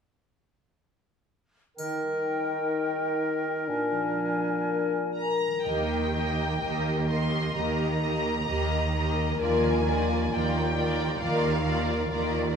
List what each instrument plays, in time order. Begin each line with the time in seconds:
1.77 harp D#3, bassoon D#3, clarinet D#4, oboe A#4, flute section G5, triangle
2.03 harp G3
2.28 harp D#4
3.23 harp G4
3.68 harp A#2, bassoon A#2, clarinet D4, flute section G#5
3.91 harp F3
4.14 harp G#3
4.63 harp A#4
4.88 harp G#4
5.14 harp A#4, violin section A#5
5.40 harp G#3
5.47 harp D#3
5.52 harp G3
5.56 harp D#4
5.61 harp A#4, violin section A#4 D#5
5.65 double bass section D#2, cello section D#3, viola section A#3 G4, violin section G5
6.15 viola section A#3 G4, violin section A#4 D#5
6.60 double bass section D#2, cello section D#3, viola section A#3 G4, violin section A#4 D#5
7.08 viola section A#3 G4, violin section A#4 D#5 C6
7.54 double bass section D#2, cello section D#3, viola section A#3 G4, violin section A#4 D#5 A#5
8.02 viola section A#3 G4, violin section A#4 D#5
8.48 double bass section D#2, cello section D#3, viola section A#3 G4, violin section A#4 D#5
8.95 viola section A#3 G4, violin section A#4 D#5
9.22 harp D#3
9.27 harp F3
9.32 harp D4
9.36 double bass section D#2, harp A#4
9.41 cello section D#3, viola section A#3 F4, violin section A#4 D5 G#5
9.87 viola section A#3 F4, violin section A#4 D5
10.31 double bass section D#2, cello section D#3, viola section A#3 F4, violin section A#4 D5 G5
10.75 viola section A#3 F4, violin section A#4 D5
11.19 double bass section D#2, cello section D#3, viola section A#3 F4, violin section A#4 D5 F5
11.65 viola section A#3 F4, violin section A#4 D5
12.10 double bass section D#2, cello section D#3, viola section A#3 F4, violin section A#4 D5